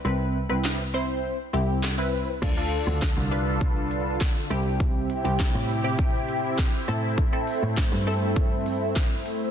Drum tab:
CC |--------|x-------|--------|--------|
HH |--------|xxxxxxxx|xxxxxxxx|xoxoxoxo|
CP |--x---x-|--x---x-|--x---x-|--x---x-|
SD |--o---o-|--o---o-|--o---o-|--o---o-|
BD |--------|o-o-o-o-|o-o-o-o-|o-o-o-o-|